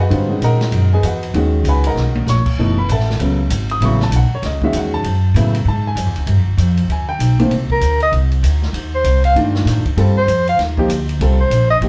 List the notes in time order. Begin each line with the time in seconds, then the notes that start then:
0.00 F#4 B4 D#5 F#5
0.10 G#2 D3 G3 C4 F4, ride
0.29 D#3 G#3 C#4 F#4
0.41 A#2 A#4 D#5 F#5 A#5, hi-hat pedal, ride
0.61 snare, ride
0.72 F#2, ride
0.93 G#4 B4 D#5 G#5
1.02 E2 F#4 B4 D#5 F#5, hi-hat pedal, ride
1.23 ride
1.34 D#2 D#3 G#3 C#4 F#4, ride
1.64 C#2, hi-hat pedal, ride
1.68 B4 F#5 G#5 B5
1.84 A#4 D#5 F#5 A#5, ride
1.95 B1, snare
2.15 high tom
2.26 A#1 C#5 C#6, snare, hi-hat pedal
2.46 muted upright bass stroke, kick, crash
2.58 F#1 B2 E3 A3 D#4
2.78 B4 B5
2.89 A1 A4 E5 F#5 A5, hi-hat pedal, ride
2.99 snare
3.10 snare
3.19 C#2 C#3 F#3 B3 C#4, ride
3.50 G#1, hi-hat pedal, ride
3.70 D#6, ride
3.80 A1 C#3 F#3 B3 E4, ride
3.85 C#6
4.00 A5, snare
4.11 B1, hi-hat pedal, ride
4.16 F#5
4.30 muted upright bass stroke
4.35 C#5
4.42 C#2 D#5, snare, ride
4.62 D#3 G#3 C#4 F#4 E5, kick
4.73 E2, hi-hat pedal, ride
4.77 F#5
4.94 A5
5.03 F#2, ride
5.34 A2 C#3 F#3 B3 E4, hi-hat pedal, ride
5.55 ride
5.65 G#2 A5
5.87 G#5
5.95 F#2, hi-hat pedal, ride
6.06 E2
6.16 C#2, ride
6.26 G2, ride
6.37 F2
6.47 D2
6.57 F2, hi-hat pedal, ride
6.77 ride
6.88 D2, ride
6.92 G#5
7.09 G5
7.19 B1, hi-hat pedal, ride
7.39 A#2 D#3 A3 C4, ride
7.50 C2, ride
7.70 A#4, kick
7.81 D2, hi-hat pedal, ride
8.00 D#5, ride
8.12 C2, ride
8.32 ride
8.43 D2, hi-hat pedal, ride
8.62 snare
8.73 D#2, ride
8.95 C5
9.04 C2, hi-hat pedal, ride
9.24 F5, ride
9.35 G2 D#3 A3 D4 F4, ride
9.55 snare
9.65 A2, snare, hi-hat pedal, ride
9.85 muted upright bass stroke, kick, ride
9.96 G2 G3 C4 F4 A4, ride
10.18 C5
10.27 F2, hi-hat pedal, ride
10.47 F5, ride
10.57 D#2, snare, ride
10.77 F3 A#3 D#4 G4, kick
10.88 D2, hi-hat pedal, ride
11.09 ride
11.19 C2 G3 C4 F4 A4, ride
11.41 C5
11.50 A#1, hi-hat pedal, ride
11.71 D#5
11.81 A1 F3 A#3 D#4 G4, ride